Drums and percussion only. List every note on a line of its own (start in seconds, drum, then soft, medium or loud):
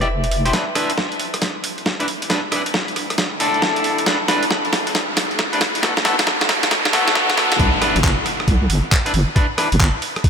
0.02 closed hi-hat soft
0.24 closed hi-hat medium
0.31 open hi-hat loud
0.46 closed hi-hat medium
0.53 kick loud
0.53 snare medium
0.53 closed hi-hat medium
0.75 cross-stick medium
0.75 open hi-hat loud
0.90 closed hi-hat medium
0.98 kick loud
0.98 snare soft
1.12 closed hi-hat soft
1.20 open hi-hat loud
1.34 cross-stick medium
1.34 closed hi-hat medium
1.42 kick loud
1.42 snare medium
1.42 closed hi-hat medium
1.64 open hi-hat loud
1.78 closed hi-hat soft
1.86 kick loud
1.86 snare medium
2.00 closed hi-hat medium
2.08 open hi-hat loud
2.22 closed hi-hat medium
2.30 kick loud
2.30 snare medium
2.30 closed hi-hat medium
2.52 cross-stick medium
2.52 open hi-hat loud
2.66 closed hi-hat medium
2.74 kick loud
2.74 snare medium
2.88 closed hi-hat soft
2.96 cross-stick soft
2.96 open hi-hat medium
3.10 cross-stick medium
3.10 closed hi-hat medium
3.18 kick loud
3.18 snare medium
3.18 closed hi-hat medium
3.40 open hi-hat loud
3.54 closed hi-hat soft
3.62 kick loud
3.62 snare medium
3.76 closed hi-hat soft
3.84 open hi-hat loud
3.98 closed hi-hat medium
4.06 kick loud
4.06 snare medium
4.06 closed hi-hat medium
4.28 snare medium
4.28 open hi-hat loud
4.43 closed hi-hat medium
4.51 kick loud
4.51 snare medium
4.65 closed hi-hat soft
4.73 snare medium
4.73 open hi-hat medium
4.87 closed hi-hat medium
4.95 kick loud
4.95 snare medium
4.95 closed hi-hat medium
5.17 snare medium
5.17 open hi-hat loud
5.31 closed hi-hat soft
5.39 kick loud
5.39 snare medium
5.53 closed hi-hat soft
5.61 snare medium
5.61 open hi-hat medium
5.75 closed hi-hat medium
5.83 kick loud
5.83 snare loud
5.83 closed hi-hat medium
5.97 snare medium
6.05 snare medium
6.05 open hi-hat loud
6.19 snare medium
6.19 closed hi-hat medium
6.27 kick loud
6.27 snare medium
6.41 snare medium
6.41 closed hi-hat soft
6.49 snare loud
6.49 open hi-hat medium
6.63 snare medium
6.63 closed hi-hat medium
6.71 kick loud
6.71 snare loud
6.71 closed hi-hat medium
6.85 snare medium
6.93 snare loud
6.93 open hi-hat loud
7.08 snare medium
7.08 closed hi-hat soft
7.15 kick loud
7.15 snare loud
7.30 snare medium
7.30 closed hi-hat soft
7.37 snare loud
7.37 open hi-hat medium
7.52 snare loud
7.52 closed hi-hat medium
7.59 kick loud
7.59 closed hi-hat medium
7.82 cross-stick medium
7.82 open hi-hat loud
7.96 closed hi-hat medium
8.04 kick loud
8.04 clap loud
8.04 closed hi-hat medium
8.26 cross-stick soft
8.26 open hi-hat loud
8.40 cross-stick medium
8.48 kick loud
8.48 closed hi-hat medium
8.70 open hi-hat loud
8.92 kick loud
8.92 clap loud
8.92 closed hi-hat medium
9.06 closed hi-hat medium
9.14 open hi-hat loud
9.36 kick loud
9.36 closed hi-hat medium
9.58 cross-stick medium
9.58 open hi-hat loud
9.72 closed hi-hat medium
9.80 kick loud
9.80 clap loud
9.80 closed hi-hat medium
10.02 open hi-hat loud
10.16 cross-stick medium
10.16 closed hi-hat soft
10.24 kick loud
10.24 closed hi-hat medium